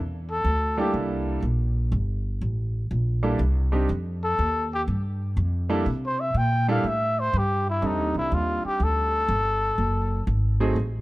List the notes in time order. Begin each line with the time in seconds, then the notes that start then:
Already playing: E2
0.31 A4
0.44 D2
0.78 G3 A#3 D4 E4 G4 A4
0.94 C2
1.42 A#1
1.92 G1
2.41 A1
2.91 A#1
3.23 G3 A#3 D4 E4 A4
3.39 C2
3.72 G3 C4 D4 D#4 G4
3.89 F2
4.24 A4
4.39 D#2
4.74 G4
4.88 G2
5.37 F2
5.69 G3 A#3 D4 E4 A4
5.86 C3
6.06 C5
6.20 E5
6.34 A#2 G5
6.68 G3 A#3 D4 E4 A4 F5
6.84 A2
6.88 E5
7.20 C5
7.33 G2
7.38 G4
7.69 E4
7.81 F2 G3 C4 D4 D#4 A4
7.86 D#4
7.99 D#2
8.14 C2 E4
8.32 D#2 F4
8.64 G4, muted upright bass stroke
8.80 D2 A4
9.28 G1
9.78 F#1
10.27 G#1
10.60 F#3 A3 C4 D#4 G#4
10.76 A1